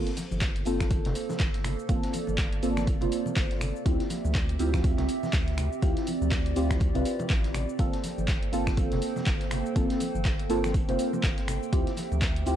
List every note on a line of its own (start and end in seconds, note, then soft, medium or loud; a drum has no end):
0.00 3.82 A#3 medium
0.00 3.82 A4 medium
0.00 1.87 C5 medium
0.07 snare soft
0.07 closed hi-hat medium
0.17 snare soft
0.17 closed hi-hat medium
0.17 open hi-hat loud
0.17 high conga medium
0.17 cabasa medium
0.31 0.64 G1 loud
0.31 high conga medium
0.31 cabasa soft
0.41 kick loud
0.41 snare loud
0.41 clap loud
0.41 closed hi-hat medium
0.41 cabasa soft
0.56 closed hi-hat medium
0.65 1.02 G1 loud
0.65 1.86 A#3 medium
0.65 1.86 C4 medium
0.65 1.87 F4 medium
0.65 1.87 A4 loud
0.65 closed hi-hat medium
0.65 open hi-hat loud
0.65 cabasa medium
0.80 finger snap medium
0.80 kick medium
0.80 snare soft
0.80 high conga medium
0.80 cabasa soft
0.90 kick loud
0.90 closed hi-hat loud
0.90 closed hi-hat medium
0.90 cabasa soft
1.05 1.14 F1 loud
1.05 snare soft
1.05 closed hi-hat medium
1.05 low conga loud
1.15 closed hi-hat medium
1.15 open hi-hat loud
1.15 cabasa medium
1.29 snare soft
1.29 high conga medium
1.29 low conga medium
1.29 cabasa soft
1.39 1.75 G1 medium
1.39 kick loud
1.39 snare loud
1.39 clap loud
1.39 closed hi-hat medium
1.39 cabasa soft
1.54 snare soft
1.54 closed hi-hat medium
1.64 finger snap medium
1.64 closed hi-hat medium
1.64 open hi-hat loud
1.64 low conga medium
1.64 cabasa medium
1.79 cabasa soft
1.89 2.01 G1 loud
1.89 2.13 A#3 medium
1.89 2.14 C4 medium
1.89 2.14 F4 medium
1.89 2.14 A4 loud
1.89 3.84 D5 medium
1.89 kick loud
1.89 closed hi-hat medium
1.89 cabasa soft
2.03 snare soft
2.03 closed hi-hat medium
2.13 closed hi-hat medium
2.13 open hi-hat loud
2.13 high conga medium
2.13 cabasa medium
2.27 2.60 G1 loud
2.27 high conga medium
2.27 cabasa soft
2.38 kick loud
2.38 snare loud
2.38 clap loud
2.38 closed hi-hat medium
2.38 cabasa soft
2.52 closed hi-hat medium
2.62 2.98 G1 loud
2.62 2.87 A#3 loud
2.62 2.87 C4 medium
2.62 2.87 F4 medium
2.62 2.87 A4 loud
2.62 closed hi-hat medium
2.62 open hi-hat loud
2.62 cabasa medium
2.77 finger snap medium
2.77 snare soft
2.77 high conga medium
2.77 cabasa soft
2.87 kick loud
2.87 closed hi-hat medium
2.87 cabasa soft
3.01 3.10 F1 loud
3.01 3.83 A#3 medium
3.01 3.83 C4 medium
3.01 3.83 F4 medium
3.01 3.83 C5 medium
3.01 closed hi-hat soft
3.01 closed hi-hat medium
3.01 low conga medium
3.12 closed hi-hat medium
3.12 open hi-hat loud
3.12 cabasa medium
3.26 high conga medium
3.26 low conga medium
3.26 cabasa soft
3.36 3.72 G1 medium
3.36 kick loud
3.36 snare loud
3.36 clap loud
3.36 closed hi-hat medium
3.36 cabasa soft
3.51 snare soft
3.51 closed hi-hat medium
3.61 finger snap medium
3.61 closed hi-hat medium
3.61 open hi-hat medium
3.61 low conga medium
3.61 cabasa medium
3.76 cabasa soft
3.85 3.98 D2 loud
3.85 4.03 C4 medium
3.85 7.75 C4 medium
3.85 4.03 E4 medium
3.85 4.03 F4 medium
3.85 7.75 G4 medium
3.85 4.03 G4 loud
3.85 5.80 E5 medium
3.85 kick loud
3.85 closed hi-hat medium
3.85 cabasa soft
4.00 snare soft
4.00 closed hi-hat medium
4.10 snare soft
4.10 closed hi-hat medium
4.10 open hi-hat loud
4.10 high conga medium
4.10 cabasa medium
4.25 4.57 D2 loud
4.25 high conga medium
4.25 cabasa soft
4.35 kick loud
4.35 snare loud
4.35 clap loud
4.35 closed hi-hat loud
4.35 closed hi-hat medium
4.35 cabasa soft
4.49 closed hi-hat medium
4.59 4.95 D2 loud
4.59 5.80 C4 medium
4.59 5.80 E4 medium
4.59 5.80 F4 medium
4.59 5.80 G4 loud
4.59 closed hi-hat medium
4.59 open hi-hat loud
4.59 cabasa medium
4.73 finger snap medium
4.73 kick medium
4.73 snare medium
4.73 high conga medium
4.73 cabasa soft
4.84 kick loud
4.84 closed hi-hat medium
4.84 cabasa soft
4.98 5.07 C2 loud
4.98 snare soft
4.98 closed hi-hat soft
4.98 low conga medium
5.09 closed hi-hat medium
5.09 open hi-hat loud
5.09 cabasa medium
5.23 snare soft
5.23 high conga medium
5.23 low conga medium
5.23 cabasa soft
5.33 5.69 D2 medium
5.33 kick loud
5.33 snare loud
5.33 clap loud
5.33 closed hi-hat medium
5.33 cabasa soft
5.47 snare soft
5.47 closed hi-hat soft
5.58 finger snap medium
5.58 closed hi-hat medium
5.58 open hi-hat loud
5.58 low conga medium
5.58 cabasa medium
5.73 cabasa soft
5.82 5.95 D2 loud
5.82 6.07 C4 medium
5.82 6.07 E4 medium
5.82 6.07 F4 medium
5.82 6.07 G4 loud
5.82 7.77 D5 medium
5.82 kick loud
5.82 closed hi-hat medium
5.82 closed hi-hat loud
5.82 cabasa soft
5.97 snare soft
5.97 closed hi-hat medium
6.07 closed hi-hat medium
6.07 open hi-hat loud
6.07 high conga medium
6.07 cabasa medium
6.21 6.54 D2 loud
6.21 high conga medium
6.21 cabasa soft
6.31 kick loud
6.31 snare loud
6.31 clap loud
6.31 closed hi-hat loud
6.31 closed hi-hat medium
6.31 cabasa soft
6.46 closed hi-hat medium
6.56 6.92 D2 loud
6.56 6.81 C4 loud
6.56 6.81 E4 medium
6.56 6.81 F4 medium
6.56 6.81 G4 loud
6.56 closed hi-hat medium
6.56 open hi-hat medium
6.56 cabasa medium
6.70 finger snap medium
6.70 kick medium
6.70 snare soft
6.70 high conga medium
6.70 cabasa soft
6.80 kick loud
6.80 closed hi-hat medium
6.80 cabasa soft
6.95 7.04 C2 loud
6.95 7.76 C4 medium
6.95 7.77 E4 medium
6.95 7.77 F4 medium
6.95 7.77 B4 medium
6.95 closed hi-hat soft
6.95 low conga medium
7.05 closed hi-hat medium
7.05 open hi-hat loud
7.05 cabasa medium
7.19 closed hi-hat soft
7.19 high conga medium
7.19 low conga medium
7.19 cabasa soft
7.29 7.66 A1 medium
7.29 kick loud
7.29 snare loud
7.29 clap loud
7.29 closed hi-hat medium
7.29 cabasa soft
7.44 snare soft
7.44 closed hi-hat soft
7.54 finger snap medium
7.54 closed hi-hat medium
7.54 open hi-hat loud
7.54 low conga medium
7.54 cabasa medium
7.69 cabasa soft
7.79 7.91 G1 loud
7.79 7.96 A#3 medium
7.79 11.69 A#3 medium
7.79 7.96 C4 medium
7.79 7.96 F4 medium
7.79 11.69 A4 medium
7.79 7.96 A4 loud
7.79 11.69 C5 medium
7.79 12.56 G5 medium
7.79 kick loud
7.79 closed hi-hat medium
7.79 cabasa soft
7.93 snare soft
7.93 closed hi-hat medium
8.04 snare soft
8.04 closed hi-hat medium
8.04 open hi-hat loud
8.04 high conga medium
8.04 cabasa medium
8.18 8.50 G1 medium
8.18 high conga medium
8.18 cabasa soft
8.28 kick loud
8.28 snare loud
8.28 clap loud
8.28 closed hi-hat medium
8.28 cabasa soft
8.43 closed hi-hat medium
8.52 8.88 G1 loud
8.52 9.73 A#3 medium
8.52 9.73 C4 medium
8.52 9.73 F4 medium
8.52 9.74 A4 loud
8.52 closed hi-hat medium
8.52 open hi-hat loud
8.52 cabasa medium
8.67 finger snap medium
8.67 kick medium
8.67 snare soft
8.67 high conga medium
8.67 cabasa soft
8.77 kick loud
8.77 closed hi-hat medium
8.77 cabasa soft
8.92 9.01 F1 loud
8.92 snare soft
8.92 closed hi-hat soft
8.92 low conga medium
9.02 closed hi-hat medium
9.02 open hi-hat loud
9.02 cabasa medium
9.16 snare soft
9.16 high conga medium
9.16 low conga medium
9.16 cabasa soft
9.26 9.62 G1 medium
9.26 kick loud
9.26 snare loud
9.26 clap loud
9.26 closed hi-hat medium
9.26 cabasa soft
9.41 snare soft
9.41 closed hi-hat medium
9.51 finger snap medium
9.51 closed hi-hat medium
9.51 open hi-hat medium
9.51 low conga medium
9.51 cabasa medium
9.66 cabasa soft
9.76 9.88 G1 loud
9.76 10.00 A#3 medium
9.76 10.00 C4 medium
9.76 10.00 F4 medium
9.76 10.01 A4 loud
9.76 kick loud
9.76 closed hi-hat medium
9.76 cabasa soft
9.90 snare soft
9.90 closed hi-hat medium
10.00 closed hi-hat medium
10.00 open hi-hat loud
10.00 high conga medium
10.00 cabasa medium
10.15 10.47 G1 loud
10.15 high conga medium
10.15 cabasa soft
10.25 kick loud
10.25 snare loud
10.25 clap loud
10.25 closed hi-hat medium
10.25 cabasa soft
10.39 closed hi-hat medium
10.49 10.85 G1 loud
10.49 10.74 A#3 loud
10.49 10.74 C4 medium
10.49 10.74 F4 medium
10.49 10.74 A4 loud
10.49 closed hi-hat medium
10.49 open hi-hat medium
10.49 cabasa medium
10.64 finger snap medium
10.64 snare soft
10.64 high conga medium
10.64 cabasa soft
10.74 kick loud
10.74 closed hi-hat medium
10.74 cabasa soft
10.88 10.97 F1 loud
10.88 11.70 A#3 medium
10.88 11.70 C4 medium
10.88 11.70 F4 medium
10.88 11.70 C5 medium
10.88 closed hi-hat medium
10.88 closed hi-hat soft
10.88 low conga loud
10.99 closed hi-hat medium
10.99 open hi-hat loud
10.99 cabasa medium
11.13 high conga medium
11.13 low conga medium
11.13 cabasa soft
11.23 11.59 G1 medium
11.23 kick loud
11.23 snare loud
11.23 clap loud
11.23 closed hi-hat medium
11.23 cabasa soft
11.38 snare soft
11.38 closed hi-hat medium
11.48 finger snap medium
11.48 closed hi-hat medium
11.48 open hi-hat medium
11.48 low conga medium
11.48 cabasa medium
11.63 cabasa soft
11.72 11.85 D2 loud
11.72 11.89 C4 medium
11.72 12.56 C4 medium
11.72 11.89 E4 medium
11.72 11.90 F4 medium
11.72 12.56 G4 medium
11.72 11.90 G4 loud
11.72 12.56 E5 medium
11.72 kick loud
11.72 closed hi-hat medium
11.72 cabasa soft
11.87 snare soft
11.87 closed hi-hat medium
11.97 snare soft
11.97 closed hi-hat medium
11.97 open hi-hat loud
11.97 high conga medium
11.97 cabasa medium
12.12 12.44 D2 loud
12.12 high conga medium
12.12 cabasa soft
12.21 kick loud
12.21 snare loud
12.21 clap loud
12.21 closed hi-hat loud
12.21 closed hi-hat medium
12.21 cabasa soft
12.36 closed hi-hat medium
12.46 12.56 D2 loud
12.46 12.56 C4 medium
12.46 12.56 E4 medium
12.46 12.56 F4 medium
12.46 12.56 G4 loud
12.46 closed hi-hat medium
12.46 open hi-hat medium
12.46 cabasa medium